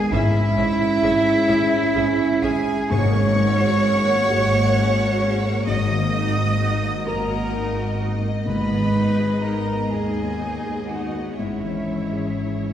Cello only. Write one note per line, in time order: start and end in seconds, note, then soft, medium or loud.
0.00 0.12 G#4 loud
0.13 2.44 E4 loud
2.42 2.94 G#4 medium
2.93 5.67 C#5 loud
5.68 7.04 D#5 medium
7.08 7.98 A#4 medium
8.48 9.45 B4 medium
9.44 9.91 A#4 medium
9.93 10.90 G#4 medium
10.88 11.37 F#4 medium
11.38 12.73 E4 soft